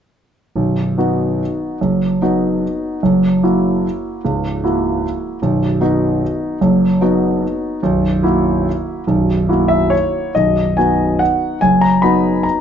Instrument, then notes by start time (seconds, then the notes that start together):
grand piano
0.55 B0 B1
0.98 B3 D#4 F#4
1.81 F#1 F#2
2.22 B3 D#4 F#4
3.03 F#1 F#2
3.43 A#3 E4 F#4
4.25 C#1 C#2
4.64 A#3 E4 F#4
5.42 B0 B1
5.81 B3 D#4 F#4
6.61 F#1 F#2
7.01 B3 D#4 F#4
7.83 B0 B1
8.23 A#3 E4 F#4
9.07 B0 B1
9.49 A#3 E4 F#4
9.68 E5
9.90 C#5
10.35 B0 B1 D#5
10.77 B3 D#4 F#4 G#5
11.19 F#5
11.61 F#1 F#2 G#5
11.81 A#5
12.02 B3 D#4 F#4 B5
12.43 A#5